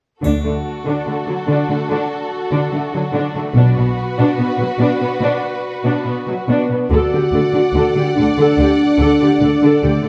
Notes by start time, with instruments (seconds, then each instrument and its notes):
0.22 double bass section D2, cello section D3, viola section D4, violin section F#4 A4, triangle
0.43 cello section D3, viola section A3
0.86 cello section D3, viola section D4
1.06 cello section D3, viola section A3
1.27 cello section D3, viola section F#3
1.47 cello section D3, viola section D4
1.69 cello section D3, viola section A3
1.89 cello section D3, viola section D4
2.51 cello section D3, viola section D4
2.72 cello section D3, viola section A3
2.93 cello section D3, viola section F#3
3.13 cello section D3, viola section D4
3.35 cello section D3, viola section A3
3.54 double bass section B1, cello section B2, viola section D4, violin section F#4 B4
3.76 cello section B2, viola section B3
4.18 cello section B2, viola section D4
4.38 cello section B2, viola section B3
4.59 cello section B2, viola section F#3
4.79 cello section B2, viola section D4
5.00 cello section B2, viola section B3
5.20 cello section B2, viola section D4
5.84 cello section B2, viola section D4
6.05 cello section B2, viola section B3
6.27 cello section B2, viola section F#3
6.48 cello section B2, french horn section B3, viola section D4
6.70 cello section B2, viola section B3
6.90 double bass section D2, cello section D3, french horn section F#4, viola section A4, violin section D5 F#5
7.13 cello section D3, viola section G4
7.32 double bass section D2, cello section D3, viola section A4
7.54 cello section D3, viola section F#4
7.73 double bass section D2, cello section D3
7.78 viola section A4
7.95 cello section D3, viola section G4
8.16 double bass section D2, cello section D3, french horn section D4, viola section A4
8.38 cello section D3, viola section A4
8.58 double bass section D2, cello section D3
8.62 viola section G4
8.98 double bass section D2, cello section D3, viola section A4
9.21 cello section D3, viola section G4
9.40 double bass section D2, cello section D3, viola section A4
9.62 cello section D3, viola section A4
9.82 double bass section D2, cello section D3, french horn section A3, viola section G4
10.03 cello section D3, viola section A4